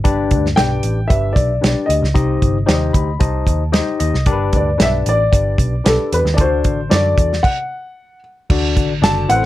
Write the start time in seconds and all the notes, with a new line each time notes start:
0.04 G1 G2 D4 G4 B4 D5, kick, closed hi-hat
0.31 D2, kick, closed hi-hat
0.46 snare
0.56 B1 D4 G4 B4 D5 G5, snare, closed hi-hat
0.83 A1, closed hi-hat
1.08 G1 D4 G4 B4 D5 E5, kick, closed hi-hat
1.16 E5
1.33 B1 D5, kick
1.37 closed hi-hat
1.61 B1 D4 G4 B4 C#5, snare, closed hi-hat
1.68 D5
1.86 D2 D#5
1.90 closed hi-hat
2.02 C#2, snare
2.14 C2 C3 D#4 G4 C5 D#5, kick, closed hi-hat
2.42 G1, kick, closed hi-hat
2.66 D#2 D#4 G4 C5 D5, snare, closed hi-hat
2.74 D#5
2.93 D2 B5, kick, closed hi-hat
3.19 C2 D#4 G4 C5 D#5 A5, kick, closed hi-hat
3.47 D#2, kick, closed hi-hat
3.72 D#4 G4 C5 D#5 G5, snare, closed hi-hat
4.00 D#2 D#5, closed hi-hat
4.14 C2, snare
4.26 G1 G2 D4 G4 A#4 D5, kick, closed hi-hat
4.32 B4
4.53 D2 D5, kick, closed hi-hat
4.78 B1 D4 G4 B4 C#5, snare, closed hi-hat
4.82 D5 E5
5.06 A1 D5, closed hi-hat
5.32 G1 D4 G4 B4 D5, kick, closed hi-hat
5.58 B1, kick, closed hi-hat
5.84 B1 D4 G4 A4 B4 D5, snare, closed hi-hat
6.12 E2 B4, closed hi-hat
6.25 D#2, snare
6.34 D3 D4 F4 A4 D5, closed hi-hat
6.38 C5, kick
6.43 F#4
6.64 A1, kick, closed hi-hat
6.89 F#2 D4 F4 A4 D5, snare, closed hi-hat
6.96 F#4
7.17 E2, kick, closed hi-hat
7.33 snare
7.43 F#5, kick, crash
8.50 D2 D3 D4 F#4 A4 D5, kick, crash
8.77 A1, kick, closed hi-hat
9.02 F#1 D4 F#4 A4 D5 A5, snare, closed hi-hat
9.28 A1 A2 C4 E4 A4 B4 F#5, closed hi-hat
9.36 C5